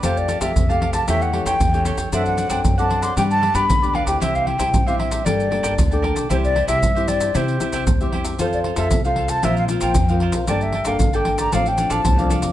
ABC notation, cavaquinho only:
X:1
M:4/4
L:1/16
Q:1/4=115
K:F
V:1 name="Cavaquinho"
[GAfa]2 [GAfa] [GAfa] z [Gfa] [GAfa] [Gfa] [GA^cg]2 [GAcg] [GAcg] z [Acg] [GAcg] [Acg] | [Dcd^f]2 [Dcdf] [Dcdf] z [cdf] [Dcdf] [cdf] [DG=Bd]2 [DGBd] [DGBd] z [GBd] [DGBd] [GBd] | [EGce]2 [EGce] [EGce] z [Gce] [EGce] [Gce] [Bdga]2 [Bdga] [Bdga] z [dga] [Bdga] [dga] | [EGce]2 [EGce] [EGce] z [Gce] [EGce] [Gce] [EGce]2 [EGce] [EGce] z [Gce] [EGce] [Gce] |
[FAcf]2 [FAcf] [FAcf] z [Acf] [FAcf] [Acf] [FBcf]2 [FBcf] [FBcf] z [Bcf] [FBcf] [Bcf] | [Bdga]2 [Bdga] [Bdga] z [dga] [Bdga] [dga] [DAdf]2 [DAdf] [DAdf] z [Adf] [DAdf] [Adf] |]